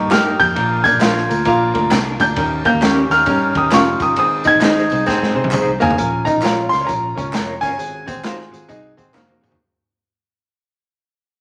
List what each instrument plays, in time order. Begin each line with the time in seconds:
Already playing: fingered electric bass G2, grand piano C#6
0.11 upright piano A#3 D#4 G4 A#4, clean electric guitar D#4 G4 A#4, hollow-body jazz guitar G4, grand piano F6, snare, clap, ride, tambourine
0.40 fingered electric bass F2, upright piano A#3 D#4 G4 A#4, grand piano G6, kick, ride, tambourine
0.56 fingered electric bass A#1, upright piano A#3 D4 F4 A#4, ride
0.84 upright piano A#3 D4 F4 A#4, hollow-body jazz guitar D4, grand piano G#6, kick, ride, tambourine
0.93 fingered electric bass A#1
1.00 fingered electric bass A#1, upright piano A#3 D4 F4 A#4, clean electric guitar D4 F4 A#4, hollow-body jazz guitar F4, snare, clap, ride, tambourine
1.17 snare
1.29 fingered electric bass D2, upright piano A#3 D4 F4 A#4, ride, tambourine
1.45 fingered electric bass A#1, upright piano A#3 D4 F4 A#4, hollow-body jazz guitar F4, kick, ride, tambourine
1.74 fingered electric bass D2, upright piano A#3 D4 F4 A#4, kick, ride
1.91 fingered electric bass C2, upright piano A#3 D4 F4 A#4, clean electric guitar D4 F4 A#4, snare, clap, ride, tambourine
2.20 fingered electric bass D2, upright piano A#3 D4 F4 A#4, hollow-body jazz guitar D4, grand piano G6, kick, ride, tambourine
2.36 fingered electric bass D#2, upright piano C#4 D#4 G4 A#4, kick, ride, tambourine
2.65 hollow-body jazz guitar A#3, upright piano C#4 D#4 G4 A#4, grand piano G6, kick, ride, tambourine
2.73 fingered electric bass D#2
2.82 clean electric guitar C#4 G4 A#4, hollow-body jazz guitar C#4, upright piano C#4 D#4 G4 A#4, snare, clap, ride, tambourine
3.09 fingered electric bass D#2, upright piano C#4 D#4 G4 A#4, grand piano F6, snare, ride, tambourine
3.26 fingered electric bass G2, upright piano C#4 D#4 G4 A#4, hollow-body jazz guitar C#4, kick, ride, tambourine
3.55 fingered electric bass D#2, upright piano C#4 D#4 G4 A#4, grand piano D#6, kick, ride
3.71 fingered electric bass F1, clean electric guitar C#4 G4 A#4, upright piano C#4 D#4 G4 A#4, hollow-body jazz guitar F4, grand piano C#6, snare, clap, ride, tambourine
4.00 fingered electric bass G1, upright piano C#4 D#4 G4 A#4, grand piano D#6, kick, ride, tambourine
4.16 fingered electric bass G#1, upright piano C4 D#4 G#4 C5, grand piano D#6, ride, tambourine
4.44 upright piano C4 D#4 G#4 C5, hollow-body jazz guitar D#4, grand piano G#6, kick, ride, tambourine
4.55 fingered electric bass G#1
4.61 fingered electric bass G#1, upright piano C4 D#4 G#4 C5, hollow-body jazz guitar D#4, clean electric guitar D#4 G#4 C5, snare, clap, ride, tambourine
4.78 snare
4.89 fingered electric bass C2, upright piano C4 D#4 G#4 C5, ride, tambourine
5.06 hollow-body jazz guitar C4, upright piano C4 D#4 G#4 C5, kick, snare, tambourine
5.22 fingered electric bass G#2, snare
5.35 fingered electric bass C3, upright piano C4 D#4 G#4 C5
5.44 fingered electric bass C2, high tom
5.51 upright piano C4 D#4 G#4 C5, clean electric guitar D#4 G#4 C5, clap, mid tom, tambourine
5.67 fingered electric bass C2
5.80 fingered electric bass G#1, hollow-body jazz guitar A#3, upright piano C4 D#4 G#4 C5, grand piano G#5, floor tom, tambourine
5.91 floor tom
5.98 fingered electric bass A#1, upright piano C#4 F4 A#4, kick, closed hi-hat, tambourine
6.25 upright piano C#4 F4 A#4, hollow-body jazz guitar D#4, grand piano A#5, kick, closed hi-hat, tambourine
6.36 fingered electric bass A#1
6.42 fingered electric bass A#1, upright piano C#4 F4 A#4, hollow-body jazz guitar F4, clean electric guitar F4 A#4 C#5, snare, clap, closed hi-hat, tambourine
6.69 fingered electric bass C#2, upright piano C#4 F4 A#4, grand piano C6, snare, closed hi-hat, tambourine
6.81 clean electric guitar F4 A#4 C#5
6.86 fingered electric bass A#1, upright piano C#4 F4 A#4, grand piano A#5, kick, closed hi-hat, tambourine
7.15 fingered electric bass C#2, upright piano C#4 F4 A#4, hollow-body jazz guitar C#4, kick, closed hi-hat
7.32 fingered electric bass F1, upright piano C#4 F4 A#4, clean electric guitar F4 A#4 C#5, snare, clap, closed hi-hat, tambourine
7.61 fingered electric bass G1, upright piano C#4 F4 A#4, hollow-body jazz guitar C#4, clean electric guitar F4 A#4, grand piano G#5, kick, closed hi-hat, tambourine
7.65 clean electric guitar C#5
7.78 fingered electric bass G#1, upright piano C4 F#4 G#4, closed hi-hat
8.06 upright piano C4 F#4 G#4, hollow-body jazz guitar C4, kick, closed hi-hat, tambourine
8.16 fingered electric bass G#1
8.24 upright piano C4 F#4 G#4, clean electric guitar D#4 F#4 C5, hollow-body jazz guitar F4, snare, clap, closed hi-hat, tambourine
8.40 snare
8.52 fingered electric bass G#1, upright piano C4 F#4 G#4, closed hi-hat, tambourine
8.68 fingered electric bass C2, upright piano C4 F#4 G#4, hollow-body jazz guitar D#4, kick, closed hi-hat, tambourine
8.97 fingered electric bass G#1, upright piano C4 F#4 G#4, hollow-body jazz guitar C4, kick, closed hi-hat
9.13 fingered electric bass F1, hollow-body jazz guitar A#3, upright piano C4 F#4 G#4, clean electric guitar D#4 F#4 C5, snare, clap, tambourine
9.29 high tom
9.41 fingered electric bass F#1, upright piano C4 F#4 G#4, clean electric guitar D#4 F#4, mid tom, tambourine
9.45 clean electric guitar C5
9.52 floor tom